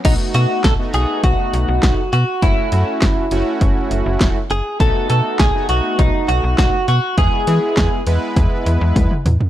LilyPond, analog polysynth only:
\new Staff \with { instrumentName = "Analog polysynth" } { \time 4/4 \key b \mixolydian \tempo 4 = 101 <a b dis' fis'>4 r16 <a b dis' fis'>16 <a b dis' fis'>4.~ <a b dis' fis'>16 r8. | <a cis' e' fis'>8 <a cis' e' fis'>4 <a cis' e' fis'>4.~ <a cis' e' fis'>16 r8. | <a b dis' fis'>4 r16 <a b dis' fis'>16 <a b dis' fis'>4.~ <a b dis' fis'>16 r8. | <gis b e' gis'>8 <gis b e' gis'>4 <gis b e' b'>4.~ <gis b e' b'>16 r8. | }